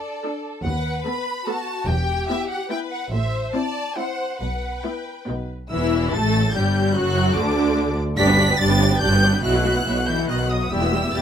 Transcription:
Already playing: D4 A4 D5
0.24 D4 A4
0.65 D#2 B4 F#5
1.06 B3 A4 B5
1.47 B3 F#4 A4 A5
1.88 E1 E2 G4 G5
2.29 B3 E4 E5
2.49 F#5
2.70 B3 E4 B4 G5
2.91 F#5
3.12 A1 A2 C5 E5
3.54 C4 E4 D5 A5
3.97 C4 E4 C5 F#5
4.40 B1 B2 B4 F#5
4.83 B3 E4 G5
5.27 B1 B2 B3 D#4
5.70 E1 E2 E3 E4 E6
6.12 A1 A2 A3 A4 A6
6.54 G1 G2 G3 G4 G6
6.95 F#1 F#2 F#3 F#4 F#6
7.36 D2 D3 D4 D6
8.18 G1 G2 D4 G4 D5 B6
8.28 B3 D4 B4 G5
8.39 D4 G4 D5
8.49 B3 D4 B4 G5
8.59 G1 G2 D4 G4 D5 A6
8.70 B3 D4 B4 G5
8.81 D4 G4 D5
8.91 B3 D4 B4 G5
9.00 G1 G2 D4 G4 D5 G6
9.11 B3 D4 B4 G5
9.22 D4 G4 D5
9.33 B3 D4 B4 G5
9.43 B1 B2 F#3 E4 F#4 E5 F#6
9.54 B3 E4 B4 F#5
9.64 F#3 E4 F#4 E5
9.75 B3 E4 B4 F#5
9.86 B1 B2 F#3 E4 E5
9.97 B4 F#5
10.07 E3 E4 E5 G6
10.18 B4 F#5
10.29 B1 B2 D#3 D#5 F#6
10.40 B4 F#5
10.50 F#3 D#5 D#6
10.62 B4 F#5
10.71 E1 E2 G3 E4 G4 G5 E6
10.82 B3 E4 G4 E5
10.92 G3 E4 G4 G5
11.03 B3 E4 G4 E5
11.14 E1 E2 G3 E4 G4 G5 A6

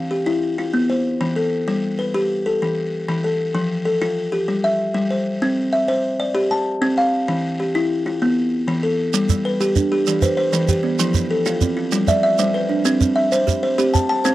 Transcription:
Already playing: E3
0.11 G4
0.26 E4
0.58 F4
0.73 B3
0.90 C5
1.21 E3
1.36 A4
1.68 G3
1.99 B4
2.14 G4
2.46 A4
2.62 E3
3.08 E3
3.24 A4
3.55 F3
3.85 A4
4.02 F4
4.32 G4
4.48 G3
4.64 E5
4.94 G3
5.11 C5
5.42 C4
5.73 E5
5.88 C5
6.20 D5
6.35 G4
6.51 A5
6.82 C4
6.98 F5
7.28 E3
7.60 G4
7.75 E4
8.06 F4
8.22 B3
8.68 E3
8.83 A4
9.14 G3, shekere
9.29 G3, shekere
9.45 B4
9.60 G4, shekere
9.76 D4, shekere
9.92 G4
10.07 E3 G3 G4, shekere
10.22 B4 C5, shekere
10.37 C5
10.52 E3 A4, shekere
10.68 G4, shekere
10.83 B3
10.99 F3 E4, shekere
11.14 F3, shekere
11.31 A4
11.46 F4, shekere
11.61 C4, shekere
11.77 F4
11.92 F3 G3 F4, shekere
12.07 D5 E5, shekere
12.23 E5
12.38 G3 C5, shekere
12.54 B4
12.69 D4
12.85 C4 G4, shekere
13.00 C4, shekere
13.16 E5
13.32 C5, shekere
13.47 G4, shekere
13.63 C5
13.78 C4 G4 C5, shekere
13.93 G5 A5, shekere
14.09 A5
14.24 C4 C5 F5, shekere

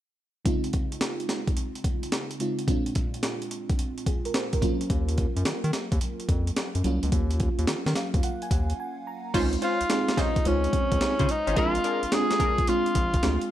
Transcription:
0.45 C#3 G#3 C4 D#4 F4, kick, closed hi-hat
0.64 closed hi-hat
0.73 kick, closed hi-hat
0.92 closed hi-hat
1.01 snare, closed hi-hat
1.20 closed hi-hat
1.29 snare, closed hi-hat
1.47 kick, closed hi-hat
1.57 closed hi-hat
1.75 closed hi-hat
1.84 kick, closed hi-hat
2.03 closed hi-hat
2.12 snare, closed hi-hat
2.31 closed hi-hat
2.40 C#3 G#3 C4 D#4 F4, closed hi-hat
2.59 closed hi-hat
2.67 A#2 G#3 C4 D4 F4, kick, closed hi-hat
2.86 closed hi-hat
2.95 kick, closed hi-hat
3.14 closed hi-hat
3.23 snare, closed hi-hat
3.42 closed hi-hat
3.51 closed hi-hat
3.69 kick, closed hi-hat
3.79 closed hi-hat
3.98 closed hi-hat
4.06 G#4, kick, closed hi-hat
4.25 A#4, closed hi-hat
4.34 C5, snare, closed hi-hat
4.53 A#4, kick, closed hi-hat
4.61 F#3 A#3 C#4 F4, kick, closed hi-hat
4.81 closed hi-hat
4.90 D#2, kick, closed hi-hat
5.09 closed hi-hat
5.18 kick, closed hi-hat
5.36 F#2, closed hi-hat
5.45 D#3, snare, closed hi-hat
5.64 D#3, closed hi-hat
5.73 snare, closed hi-hat
5.92 D#2, kick, closed hi-hat
6.01 closed hi-hat
6.20 closed hi-hat
6.29 F2, kick, closed hi-hat
6.47 closed hi-hat
6.56 snare, closed hi-hat
6.75 F#2, closed hi-hat
6.84 C2 F#3 A#3 C#4 F4, closed hi-hat
7.03 C#2, closed hi-hat
7.12 D#2, kick, closed hi-hat
7.31 closed hi-hat
7.40 kick, closed hi-hat
7.59 D#2, closed hi-hat
7.67 D#3, snare, closed hi-hat
7.86 D#3, snare, closed hi-hat
7.95 F5, snare, closed hi-hat
8.14 D#2, kick, closed hi-hat
8.23 F#5, closed hi-hat
8.42 G#5, closed hi-hat
8.51 D#2 F#5, kick, closed hi-hat
8.70 closed hi-hat
8.80 G#5
9.07 A#5
9.34 C#2 G#3 C4 C#4 D#4 F4 C5, kick, closed hi-hat, crash
9.53 closed hi-hat
9.62 C#4 F4 C5, closed hi-hat
9.81 C#2, closed hi-hat
9.90 G#3 C4 D#4 G#4, snare, closed hi-hat
10.08 snare, closed hi-hat
10.17 C#4 D#4 F4 C5, kick, snare, closed hi-hat
10.36 kick, closed hi-hat
10.45 C#2 G#3 C#4 D#4 F4 C5, closed hi-hat
10.64 closed hi-hat
10.73 kick, closed hi-hat
10.92 C#2, kick, closed hi-hat
11.01 G#3 C4 D#4 F4, snare, closed hi-hat
11.19 C#3 C#4 F4 C5, kick, closed hi-hat
11.29 D#4, closed hi-hat
11.47 G#1 C#4 F4 C5, closed hi-hat
11.56 A#1 G#3 C4 D4 F4 G#4 A#4, kick, closed hi-hat
11.75 closed hi-hat
11.84 D4 G#4 A#4, closed hi-hat
12.03 A#1, closed hi-hat
12.12 G#3 C4 D4 F4 G#4, snare, closed hi-hat
12.31 snare, closed hi-hat
12.40 D4 G#4 A#4, kick, closed hi-hat
12.58 kick, closed hi-hat
12.67 G#3 C4 D4 F4, closed hi-hat
12.86 closed hi-hat
12.95 A#1, kick, closed hi-hat
13.14 kick, closed hi-hat
13.23 D2 G#3 C4 D4 G#4, snare, closed hi-hat
13.41 closed hi-hat

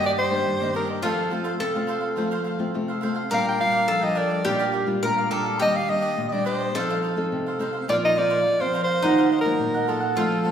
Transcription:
Already playing: G2 D#3 A#3 D4 G4
0.03 D4 G4 D5 D#5
0.17 G4 C5 D5 D#5
0.30 D#3 A#3 D4
0.46 G2
0.60 D#3 A#3 D4 G4 D5 D#5
0.73 D#3 A#3 D4 G4 A#4 D5 D#5
0.87 G4 D5 D#5
1.02 F3 A3 C4 F4 A4 C5 F5
1.30 A3 C4 F4 A4 C5 F5
1.44 F4 A4 C5 F5
1.60 C3 A4
1.75 A3 C4 F4 A4 C5 F5
1.87 F4 A4 C5 F5
2.01 A4 C5 F5
2.16 F3 A3 C4 F4 A4 C5 F5
2.31 F4 A4 C5 F5
2.44 F4 A4 C5 F5
2.59 A3 C4 F4
2.74 C3 A3 C4 F4
2.88 A4 C5 F5
3.01 A3 C4 F4 A4 C5 F5
3.14 A4 C5 F5
3.30 A#2 G3 D4 F4 A#4 D5 G5
3.34 F5
3.48 G5
3.58 G3 D4 F4 A#4 D5 F5 G5
3.71 D4 A#4 D5 G5
3.88 F3 A4
4.01 G3 D4 F4 A#4 D5 D#5 G5
4.15 D4 A#4 D5 G5
4.29 A#4 D5 G5
4.45 A#2 G3 D4 F4 G4 A#4 D5 F5
4.59 G4 A#4 D5 F5
4.72 G4 A#4 D5 F5
4.87 G3 D4 F4
5.03 A#2 G3 D4 F4 A#4
5.17 A#4 D5 F5
5.31 G3 D4 F4 G4 A4 A#4 D5 F5
5.44 A#4 D5 F5
5.59 D#3 G3 A#3 D4 G4 D5 D#5
5.76 F5
5.88 G3 A#3 D4 G4 D5 D#5
6.01 D4 G4 D5 D#5
6.18 A#2
6.29 G3 D5 D#5
6.33 A#3 D4 G4 D#5
6.45 D4 G4 C5 D5 D#5
6.58 G4 D5 D#5
6.74 F3 C4 D#4 A4 C5 F5
6.89 D#4 A4 C5 F5
7.02 D#4 A4 C5 F5
7.16 C4 D#4 A4
7.32 C3
7.46 A4 C5 F5
7.59 C4 D#4 A4 C5 F5
7.73 A4 C5 F5
7.88 A#2 F3 C4 F4 A#4 C5 D5 F5
8.05 D#5
8.15 F3 C4 F4 A#4 C5 D5 F5
8.30 F4 A#4 C5 F5
8.46 F3
8.60 F3 C4 F4 A#4 C5 F5
8.73 F4 A#4 C5 F5
8.84 C5 F5
8.89 A#4
9.02 D#3 F#3 A#3 D#4 F4 A#4 D#5 F#5
9.17 F4 A#4 D#5 F#5
9.32 A#4 D#5 F#5
9.41 A#4
9.45 F#3 A#3 F4
9.59 A#2 F#3 A#3 F4
9.74 A#4 D#5 F#5
9.87 F#3 A#3 F4 A4 A#4 D#5 F#5
10.00 A#4 D#5 F#5
10.15 F3 A3 C4 F4 A4 C5 F5
10.44 A3 C4 F4 A4 C5 F5

